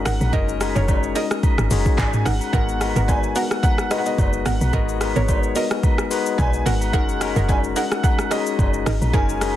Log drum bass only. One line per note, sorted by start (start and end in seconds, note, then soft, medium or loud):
0.06 0.20 G#1 medium
0.21 0.33 A#1 loud
0.33 0.74 F#1 loud
0.76 1.14 F#1 loud
1.58 1.70 G#1 medium
1.71 1.85 F#1 loud
1.98 2.13 G#1 loud
2.26 2.40 G#1 medium
2.53 2.94 G#1 loud
2.96 3.34 G#1 loud
4.18 4.45 F#1 loud
4.46 4.60 G#1 medium
4.61 4.73 B1 loud
4.73 5.14 G#1 loud
5.16 5.54 G#1 loud
6.39 6.65 B1 loud
6.66 6.95 G#1 medium
6.94 7.34 F#1 loud
7.36 7.74 F#1 loud
8.59 8.85 F#1 loud
8.86 9.01 G#1 loud
9.01 9.13 A#1 loud
9.14 9.54 F#1 loud